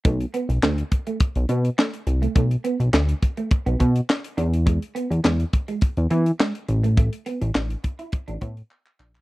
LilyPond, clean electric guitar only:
\new Staff \with { instrumentName = "Clean electric guitar" } { \time 4/4 \key b \minor \tempo 4 = 104 a16 r16 b16 r16 a16 r8 a16 r8 b16 r16 a16 r8 a16 | a16 r16 b16 r16 a16 r8 a16 r16 b16 b16 r8. d'16 r16 | gis16 r16 b16 r16 gis16 r8 gis16 r8 b16 r16 gis16 r8 a16 | a16 r16 b16 r16 d'16 r8 e'16 r16 d'16 b16 r8. d'16 r16 | }